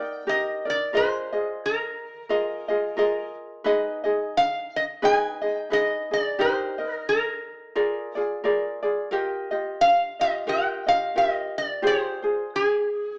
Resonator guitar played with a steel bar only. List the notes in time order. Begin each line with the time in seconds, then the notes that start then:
Already playing: G5
0.29 D#5
0.70 D5
0.97 C5
1.66 A#4
4.37 F5
4.76 D#5
5.05 G#5
5.53 G5
5.73 D#5
6.13 D5
6.41 C5
6.93 A#4
7.09 A#4
8.22 G#4
9.81 F5
10.21 D#5
10.49 G5
10.88 F5
11.18 D#5
11.58 D5
11.87 C5
12.56 G#4